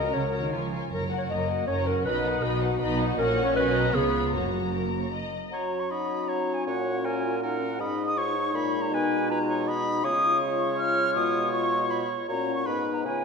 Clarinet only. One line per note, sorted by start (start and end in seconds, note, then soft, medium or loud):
0.00 0.15 D#5 medium
0.13 0.72 C#5 medium
0.93 1.04 A#4 medium
1.18 1.24 C#5 medium
1.30 1.67 D#5 medium
1.67 1.88 C#5 medium
1.87 2.05 A#4 medium
2.05 2.44 B4 medium
2.43 3.00 F#4 medium
3.18 3.42 A#4 medium
3.45 3.56 C#5 medium
3.56 3.96 B4 medium
3.95 4.34 G#4 medium
4.35 5.11 F#4 medium
5.52 5.93 F#4 soft
5.92 6.68 D#4 soft
6.67 7.07 C#4 soft
7.05 7.26 F#4 medium
7.24 7.43 F4 medium
7.44 7.62 D#4 soft
7.61 7.81 C#4 soft
7.80 8.18 D#4 medium
8.17 8.37 F4 medium
8.36 8.54 D#4 medium
8.55 9.28 D#4 medium
9.29 9.69 F4 medium
9.67 10.04 D#4 medium
10.04 12.25 F4 medium
12.29 12.50 F#4 medium
12.48 12.68 F4 soft
12.67 13.08 D#4 soft
13.06 13.24 F4 soft